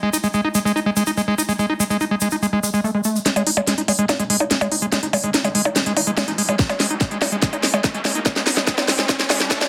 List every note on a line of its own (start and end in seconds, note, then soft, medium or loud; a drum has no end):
0.03 0.10 G#3 loud
0.13 0.17 D#4 medium
0.13 shaker medium
0.23 0.28 G#3 loud
0.23 shaker soft
0.34 0.41 G#3 loud
0.34 shaker soft
0.45 0.49 D#4 medium
0.55 0.59 G#3 loud
0.55 shaker medium
0.65 0.72 G#3 loud
0.65 shaker soft
0.76 0.80 D#4 medium
0.76 shaker soft
0.86 0.90 G#3 loud
0.96 1.03 G#3 loud
0.96 shaker medium
1.07 1.11 D#4 medium
1.07 shaker medium
1.17 1.22 G#3 loud
1.17 shaker soft
1.28 1.35 G#3 loud
1.38 1.42 D#4 medium
1.38 shaker medium
1.49 1.53 G#3 loud
1.49 shaker soft
1.59 1.66 G#3 loud
1.59 shaker soft
1.70 1.74 D#4 medium
1.80 1.84 G#3 loud
1.80 shaker medium
1.90 1.97 G#3 loud
1.90 shaker soft
2.00 2.05 D#4 medium
2.00 shaker soft
2.11 2.15 G#3 loud
2.21 2.28 G#3 loud
2.21 shaker medium
2.31 2.36 D#4 medium
2.31 shaker soft
2.42 2.47 G#3 loud
2.42 shaker soft
2.53 2.60 G#3 loud
2.63 2.70 G#3 medium
2.63 shaker medium
2.74 2.81 G#3 loud
2.74 shaker medium
2.84 2.91 A3 medium
2.84 shaker soft
2.95 3.01 G#3 medium
3.04 3.17 A3 medium
3.04 shaker medium
3.15 3.19 G#3 loud
3.15 shaker soft
3.26 3.30 G#3 loud
3.26 snare soft
3.26 closed hi-hat loud
3.26 riser medium
3.36 3.43 G#3 loud
3.36 closed hi-hat soft
3.36 percussion blips soft
3.47 3.51 D#4 medium
3.47 open hi-hat loud
3.57 3.61 G#3 loud
3.57 percussion blips medium
3.67 3.74 G#3 loud
3.67 snare soft
3.67 closed hi-hat loud
3.78 3.82 D#4 medium
3.78 closed hi-hat soft
3.88 3.92 G#3 loud
3.88 open hi-hat medium
3.88 percussion blips soft
3.99 4.06 G#3 loud
3.99 closed hi-hat soft
4.09 4.13 D#4 medium
4.09 snare medium
4.09 closed hi-hat loud
4.09 percussion blips medium
4.19 4.24 G#3 loud
4.19 closed hi-hat soft
4.30 4.37 G#3 loud
4.30 open hi-hat loud
4.40 4.44 D#4 medium
4.40 closed hi-hat soft
4.40 percussion blips soft
4.51 4.55 G#3 loud
4.51 snare medium
4.51 closed hi-hat loud
4.61 4.68 G#3 loud
4.61 closed hi-hat soft
4.61 percussion blips medium
4.72 4.76 D#4 medium
4.72 open hi-hat medium
4.82 4.86 G#3 loud
4.82 closed hi-hat soft
4.92 4.99 G#3 loud
4.92 snare medium
4.92 closed hi-hat loud
4.92 percussion blips soft
5.03 5.07 D#4 medium
5.03 closed hi-hat soft
5.13 5.17 G#3 loud
5.13 open hi-hat loud
5.13 percussion blips medium
5.24 5.30 G#3 loud
5.24 closed hi-hat soft
5.34 5.38 D#4 medium
5.34 snare medium
5.34 closed hi-hat medium
5.44 5.49 G#3 loud
5.44 closed hi-hat soft
5.44 percussion blips soft
5.55 5.62 G#3 loud
5.55 open hi-hat medium
5.65 5.69 D#4 medium
5.65 percussion blips medium
5.76 5.80 G#3 loud
5.76 snare medium
5.76 closed hi-hat loud
5.86 5.93 G#3 loud
5.86 closed hi-hat soft
5.97 6.01 D#4 medium
5.97 open hi-hat loud
5.97 percussion blips soft
6.07 6.11 G#3 loud
6.07 closed hi-hat soft
6.17 6.24 G#3 loud
6.17 snare medium
6.17 closed hi-hat loud
6.17 percussion blips medium
6.28 6.32 D#4 medium
6.28 closed hi-hat soft
6.38 6.42 G#3 loud
6.38 open hi-hat medium
6.49 6.56 G#3 loud
6.49 closed hi-hat soft
6.49 percussion blips soft
6.59 6.63 D#4 medium
6.59 kick loud
6.59 snare medium
6.59 closed hi-hat medium
6.69 6.74 G#3 loud
6.69 closed hi-hat soft
6.69 percussion blips medium
6.80 6.87 G#3 loud
6.80 snare medium
6.80 open hi-hat loud
6.90 6.94 D#4 medium
6.90 closed hi-hat soft
7.01 7.05 G#3 loud
7.01 kick loud
7.01 snare medium
7.01 closed hi-hat medium
7.01 percussion blips soft
7.11 7.18 G#3 loud
7.11 closed hi-hat soft
7.22 7.26 D#4 medium
7.22 snare medium
7.22 open hi-hat loud
7.22 percussion blips medium
7.32 7.36 G#3 loud
7.32 closed hi-hat soft
7.42 7.49 G#3 loud
7.42 kick loud
7.42 snare medium
7.42 closed hi-hat medium
7.53 7.57 D#4 medium
7.53 closed hi-hat soft
7.53 percussion blips soft
7.63 7.67 G#3 loud
7.63 snare medium
7.63 open hi-hat loud
7.74 7.80 G#3 loud
7.74 percussion blips medium
7.84 7.88 D#4 medium
7.84 kick loud
7.84 snare medium
7.84 closed hi-hat medium
7.94 7.99 G#3 loud
7.94 closed hi-hat soft
8.05 8.12 G#3 loud
8.05 snare medium
8.05 open hi-hat loud
8.05 percussion blips soft
8.15 8.19 D#4 medium
8.15 closed hi-hat soft
8.26 8.30 G#3 loud
8.26 kick loud
8.26 snare loud
8.26 closed hi-hat medium
8.26 percussion blips medium
8.36 8.43 G#3 loud
8.36 snare medium
8.36 closed hi-hat soft
8.47 8.51 D#4 medium
8.47 snare medium
8.47 open hi-hat loud
8.57 8.61 G#3 loud
8.57 snare medium
8.57 closed hi-hat soft
8.57 percussion blips soft
8.67 8.74 G#3 loud
8.67 kick loud
8.67 snare loud
8.67 closed hi-hat medium
8.78 8.82 D#4 medium
8.78 snare medium
8.78 closed hi-hat soft
8.78 percussion blips medium
8.88 8.92 G#3 loud
8.88 snare loud
8.88 open hi-hat loud
8.99 9.06 G#3 loud
8.99 snare medium
8.99 closed hi-hat soft
9.09 9.13 D#4 medium
9.09 kick loud
9.09 snare loud
9.09 closed hi-hat loud
9.09 percussion blips soft
9.19 9.24 G#3 loud
9.19 snare medium
9.19 closed hi-hat soft
9.30 9.40 G#3 medium
9.30 snare loud
9.30 open hi-hat loud
9.30 percussion blips medium
9.40 9.47 G3 medium
9.40 snare medium
9.40 closed hi-hat soft
9.51 9.63 A3 loud
9.51 kick loud
9.51 snare loud
9.51 closed hi-hat loud
9.61 9.68 G3 medium
9.61 snare medium
9.61 closed hi-hat soft
9.61 percussion blips soft